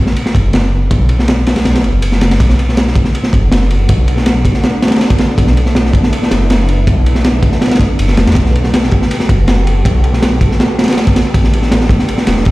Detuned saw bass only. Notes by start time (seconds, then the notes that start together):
0.35 F#1
0.91 B1
1.47 B1
1.65 B1
1.84 F#1
2.40 B1
2.95 B1
3.33 F#1
3.89 B1
4.45 B1
5.38 B1
5.93 B1
6.31 F#1
6.87 B1
7.43 B1
7.99 F#1
8.18 F#1
8.27 E2
8.35 B1
8.92 B1
9.29 F#1
9.85 B1
10.41 B1
11.34 A1
11.89 A1
12.28 E1